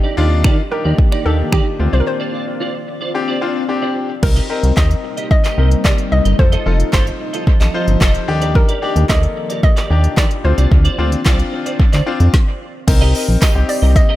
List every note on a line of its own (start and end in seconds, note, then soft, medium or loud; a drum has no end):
0.00 1.77 D#3 medium
0.00 1.77 A#3 medium
0.00 4.19 F4 medium
0.00 1.76 G4 medium
0.00 4.19 D5 medium
0.00 0.16 D5 medium
0.04 0.16 D#4 medium
0.04 0.17 G4 medium
0.17 0.46 D#2 medium
0.17 0.59 D4 loud
0.17 0.27 D#4 medium
0.17 0.59 D#4 medium
0.17 0.59 F4 loud
0.17 0.28 G4 medium
0.17 0.28 D5 medium
0.31 muted clean electric guitar stroke soft
0.44 0.62 D#3 loud
0.44 0.57 D#4 medium
0.44 0.57 G4 medium
0.44 0.57 D5 medium
0.44 finger snap loud
0.44 kick loud
0.58 muted clean electric guitar stroke soft
0.71 1.13 D4 medium
0.71 1.13 D#4 medium
0.71 1.13 G4 medium
0.71 1.22 A#4 medium
0.71 muted clean electric guitar stroke soft
0.85 0.94 D#2 medium
0.85 0.95 D#4 medium
0.85 0.95 G4 medium
0.85 0.95 D5 medium
0.98 muted clean electric guitar stroke soft
0.98 kick loud
1.12 1.24 D#4 medium
1.12 1.25 G4 medium
1.12 1.25 D5 medium
1.12 finger snap medium
1.25 1.43 D#2 loud
1.25 1.78 D4 medium
1.25 1.35 D#4 medium
1.25 1.80 D#4 medium
1.25 1.80 G4 medium
1.25 1.36 G4 medium
1.25 1.51 A4 medium
1.25 1.36 D5 medium
1.39 muted clean electric guitar stroke medium
1.52 1.61 D#3 loud
1.52 1.65 D#4 medium
1.52 1.94 G4 medium
1.52 1.65 G4 medium
1.52 1.65 D5 medium
1.52 finger snap loud
1.52 kick loud
1.66 muted clean electric guitar stroke soft
1.79 1.88 D2 loud
1.79 2.66 C4 medium
1.79 4.20 C4 medium
1.79 2.66 D4 medium
1.79 2.66 F4 medium
1.79 muted clean electric guitar stroke soft
1.93 2.02 C2 medium
1.93 2.04 F4 soft
1.93 2.00 C5 medium
1.93 2.03 C5 medium
1.93 2.03 D5 medium
2.00 2.07 A#4 medium
2.06 3.65 C5 loud
2.06 muted clean electric guitar stroke soft
2.20 2.32 F4 medium
2.20 2.33 C5 medium
2.20 2.33 D5 medium
2.33 2.43 F4 medium
2.33 2.44 C5 medium
2.33 2.44 D5 medium
2.47 muted clean electric guitar stroke medium
2.60 2.73 F4 medium
2.60 2.74 C5 medium
2.60 2.73 D5 medium
2.74 muted clean electric guitar stroke medium
2.87 muted clean electric guitar stroke soft
3.01 3.12 F4 soft
3.01 3.11 C5 medium
3.01 3.11 D5 medium
3.14 3.35 C4 medium
3.14 3.35 D4 medium
3.14 3.36 G4 loud
3.14 muted clean electric guitar stroke soft
3.28 3.40 F4 medium
3.28 3.41 C5 medium
3.28 3.41 D5 medium
3.41 3.62 C4 medium
3.41 3.62 D4 medium
3.41 3.51 F4 medium
3.41 3.63 F4 loud
3.41 3.52 C5 medium
3.41 3.52 D5 medium
3.55 muted clean electric guitar stroke medium
3.68 4.10 C4 medium
3.68 4.10 D4 medium
3.68 4.10 G4 loud
3.68 muted clean electric guitar stroke soft
3.82 3.94 F4 medium
3.82 3.95 C5 medium
3.82 3.95 D5 medium
3.95 muted clean electric guitar stroke soft
4.09 muted clean electric guitar stroke soft
4.22 4.40 C2 loud
4.22 6.37 C3 medium
4.22 6.37 G3 medium
4.22 6.37 A#3 medium
4.22 4.43 C4 medium
4.22 6.37 C4 medium
4.22 8.24 D#4 medium
4.22 4.44 D#4 medium
4.22 4.79 A#4 medium
4.22 4.44 A#4 medium
4.22 muted clean electric guitar stroke soft
4.22 kick loud
4.22 crash medium
4.36 4.48 G4 medium
4.36 4.49 A#4 medium
4.36 4.49 D#5 medium
4.36 closed hi-hat medium
4.49 4.70 C4 medium
4.49 4.71 D#4 medium
4.49 4.60 G4 medium
4.49 4.71 A#4 medium
4.49 4.60 A#4 medium
4.49 4.60 D#5 medium
4.63 4.72 C2 loud
4.63 muted clean electric guitar stroke medium
4.63 closed hi-hat medium
4.76 4.95 D#2 loud
4.76 5.39 C4 medium
4.76 5.39 D#4 medium
4.76 4.89 G4 medium
4.76 5.39 A#4 medium
4.76 4.90 A#4 medium
4.76 5.30 D#5 loud
4.76 4.89 D#5 medium
4.76 kick loud
4.76 snare medium
4.76 clap loud
4.90 muted clean electric guitar stroke medium
4.90 closed hi-hat soft
5.04 muted clean electric guitar stroke soft
5.17 5.28 G4 medium
5.17 5.27 A#4 medium
5.17 5.27 D#5 medium
5.17 closed hi-hat medium
5.31 5.87 D#5 loud
5.31 muted clean electric guitar stroke soft
5.31 kick loud
5.44 5.56 G4 medium
5.44 5.57 A#4 medium
5.44 5.57 D#5 medium
5.44 clap medium
5.44 closed hi-hat medium
5.58 5.76 C2 medium
5.58 6.20 C4 medium
5.58 6.20 D#4 medium
5.58 5.68 G4 medium
5.58 6.20 A#4 medium
5.58 5.68 A#4 medium
5.58 5.68 D#5 medium
5.71 muted clean electric guitar stroke soft
5.71 closed hi-hat medium
5.85 5.94 C3 loud
5.85 5.97 G4 medium
5.85 5.98 A#4 medium
5.85 6.13 D5 loud
5.85 5.97 D#5 medium
5.85 kick loud
5.85 snare medium
5.85 clap loud
5.98 muted clean electric guitar stroke soft
5.98 closed hi-hat medium
6.12 6.21 C2 loud
6.12 6.40 D#5 loud
6.12 muted clean electric guitar stroke soft
6.25 6.34 G1 medium
6.25 6.36 G4 soft
6.25 6.36 A#4 medium
6.25 6.35 D#5 medium
6.25 closed hi-hat medium
6.39 6.57 F1 loud
6.39 8.26 F3 medium
6.39 8.26 C4 medium
6.39 6.60 D#4 medium
6.39 6.60 F4 medium
6.39 10.40 G4 medium
6.39 8.26 A4 medium
6.39 6.60 A4 medium
6.39 6.89 C5 medium
6.39 muted clean electric guitar stroke soft
6.39 kick loud
6.52 6.64 F4 medium
6.52 6.65 A4 medium
6.52 6.65 D#5 medium
6.52 closed hi-hat medium
6.66 6.84 F1 loud
6.66 6.87 D#4 medium
6.66 6.76 F4 medium
6.66 6.87 F4 medium
6.66 6.87 A4 loud
6.66 6.76 A4 medium
6.66 6.76 D#5 medium
6.79 muted clean electric guitar stroke soft
6.79 closed hi-hat medium
6.93 7.11 G1 medium
6.93 7.55 D#4 medium
6.93 7.06 F4 medium
6.93 7.55 F4 medium
6.93 7.06 A4 loud
6.93 7.70 C5 medium
6.93 7.55 C5 medium
6.93 7.05 D#5 medium
6.93 kick loud
6.93 snare medium
6.93 clap loud
7.06 muted clean electric guitar stroke soft
7.06 closed hi-hat soft
7.20 muted clean electric guitar stroke soft
7.33 7.44 F4 medium
7.33 7.44 A4 medium
7.33 7.43 D#5 medium
7.33 closed hi-hat medium
7.47 muted clean electric guitar stroke soft
7.47 kick loud
7.60 7.69 A1 medium
7.60 7.73 F4 medium
7.60 7.74 A4 medium
7.60 7.73 D#5 medium
7.60 clap medium
7.60 closed hi-hat medium
7.74 8.27 D#4 medium
7.74 7.84 F4 medium
7.74 8.28 F4 medium
7.74 7.84 A4 medium
7.74 8.28 C5 loud
7.74 7.85 D#5 medium
7.87 7.97 G1 medium
7.87 muted clean electric guitar stroke medium
7.87 closed hi-hat medium
8.01 8.19 F1 medium
8.01 8.14 F4 medium
8.01 8.14 A4 medium
8.01 8.13 D#5 loud
8.01 kick loud
8.01 snare medium
8.01 clap loud
8.15 muted clean electric guitar stroke soft
8.15 closed hi-hat medium
8.28 8.63 D#2 loud
8.28 10.42 D#3 medium
8.28 10.42 A#3 medium
8.28 8.71 D4 loud
8.28 8.71 D#4 medium
8.28 12.30 F4 medium
8.28 8.72 G4 loud
8.28 muted clean electric guitar stroke soft
8.41 8.52 G4 soft
8.41 8.52 A#4 medium
8.41 8.52 D5 medium
8.41 closed hi-hat medium
8.55 9.11 A#4 medium
8.55 muted clean electric guitar stroke soft
8.55 kick loud
8.69 8.81 G4 medium
8.69 8.82 A#4 medium
8.69 8.81 D5 medium
8.69 closed hi-hat medium
8.82 9.03 D4 medium
8.82 9.03 D#4 medium
8.82 8.92 G4 medium
8.82 9.03 G4 loud
8.82 8.92 A#4 medium
8.82 8.93 D5 medium
8.96 9.05 D#2 loud
8.96 muted clean electric guitar stroke soft
8.96 closed hi-hat medium
9.09 9.27 D2 medium
9.09 9.71 A#3 medium
9.09 9.71 D#4 medium
9.09 9.22 G4 medium
9.09 9.71 A4 medium
9.09 9.22 A#4 medium
9.09 9.21 D5 loud
9.09 9.62 D#5 loud
9.09 kick loud
9.09 snare medium
9.09 clap loud
9.23 muted clean electric guitar stroke medium
9.23 closed hi-hat soft
9.36 muted clean electric guitar stroke soft
9.50 9.60 G4 soft
9.50 9.60 A#4 medium
9.50 9.60 D5 medium
9.50 closed hi-hat medium
9.63 10.14 D#5 loud
9.63 muted clean electric guitar stroke soft
9.63 kick loud
9.77 9.89 G4 medium
9.77 9.90 A#4 medium
9.77 9.89 D5 medium
9.77 clap medium
9.77 closed hi-hat soft
9.90 10.08 D#2 medium
9.90 10.43 D4 medium
9.90 10.44 D#4 medium
9.90 10.00 G4 medium
9.90 10.45 G4 medium
9.90 10.01 A#4 medium
9.90 10.01 D5 medium
10.04 muted clean electric guitar stroke soft
10.04 closed hi-hat medium
10.17 10.26 D#3 medium
10.17 10.30 G4 medium
10.17 10.30 A#4 medium
10.17 10.45 D5 loud
10.17 10.30 D5 medium
10.17 kick loud
10.17 snare medium
10.17 clap loud
10.31 muted clean electric guitar stroke soft
10.31 closed hi-hat medium
10.44 10.53 D2 loud
10.44 10.88 C4 medium
10.44 12.32 C4 medium
10.44 10.88 D4 medium
10.44 10.88 F4 medium
10.44 11.49 C5 medium
10.44 muted clean electric guitar stroke soft
10.58 10.67 C2 medium
10.58 10.68 F4 medium
10.58 10.68 C5 medium
10.58 10.68 D5 medium
10.58 closed hi-hat medium
10.71 10.89 D2 loud
10.71 muted clean electric guitar stroke soft
10.71 kick loud
10.85 10.97 F4 medium
10.85 10.98 C5 medium
10.85 10.97 D5 medium
10.85 closed hi-hat medium
10.98 11.16 D2 medium
10.98 11.19 C4 medium
10.98 11.19 D4 medium
10.98 11.08 F4 medium
10.98 11.19 F4 loud
10.98 11.09 C5 medium
10.98 11.09 D5 medium
11.12 muted clean electric guitar stroke medium
11.12 closed hi-hat medium
11.25 11.43 C2 medium
11.25 11.87 C4 medium
11.25 11.87 D4 medium
11.25 11.38 F4 medium
11.25 11.88 F4 loud
11.25 11.38 C5 medium
11.25 11.38 D5 loud
11.25 kick loud
11.25 snare medium
11.25 clap loud
11.39 muted clean electric guitar stroke soft
11.39 closed hi-hat soft
11.52 muted clean electric guitar stroke medium
11.66 11.76 F4 soft
11.66 11.76 C5 medium
11.66 11.76 D5 medium
11.66 closed hi-hat medium
11.79 muted clean electric guitar stroke medium
11.79 kick loud
11.93 12.02 D2 medium
11.93 12.05 F4 medium
11.93 12.06 C5 medium
11.93 12.06 D5 medium
11.93 clap medium
11.93 closed hi-hat medium
12.06 12.34 C4 medium
12.06 12.34 D4 medium
12.06 12.16 F4 medium
12.06 12.34 F4 loud
12.06 12.17 C5 medium
12.06 12.17 D5 medium
12.20 12.29 F2 medium
12.20 muted clean electric guitar stroke medium
12.20 closed hi-hat medium
12.34 kick loud
12.34 snare medium
12.87 13.14 C2 loud
12.87 14.16 C3 medium
12.87 14.16 G3 medium
12.87 14.16 A#3 medium
12.87 13.39 C4 medium
12.87 14.16 C4 medium
12.87 13.39 D#4 medium
12.87 14.16 D#4 medium
12.87 13.39 A#4 loud
12.87 muted clean electric guitar stroke soft
12.87 kick loud
12.87 closed hi-hat medium
12.87 crash loud
12.87 tambourine medium
13.01 13.13 G4 medium
13.01 13.14 A#4 medium
13.01 13.14 D#5 medium
13.14 13.24 G4 medium
13.14 13.25 A#4 medium
13.14 13.25 D#5 medium
13.14 open hi-hat medium
13.14 tambourine soft
13.28 13.37 A#1 medium
13.28 muted clean electric guitar stroke medium
13.41 13.54 G4 medium
13.41 13.55 A#4 medium
13.41 13.54 D#5 medium
13.41 kick loud
13.41 snare medium
13.41 clap loud
13.41 closed hi-hat medium
13.41 tambourine medium
13.55 13.64 C2 medium
13.55 14.07 C4 medium
13.55 14.07 D#4 medium
13.55 14.07 G4 medium
13.55 muted clean electric guitar stroke soft
13.69 13.97 D5 medium
13.69 muted clean electric guitar stroke soft
13.69 open hi-hat medium
13.69 tambourine soft
13.82 14.00 C2 medium
13.82 13.93 G4 medium
13.82 13.92 A#4 medium
13.82 13.92 D#5 medium
13.96 14.16 D#5 loud
13.96 muted clean electric guitar stroke soft
13.96 kick loud
13.96 closed hi-hat medium
13.96 tambourine soft
14.09 14.16 G4 medium
14.09 14.16 A#4 medium
14.09 14.16 D#5 medium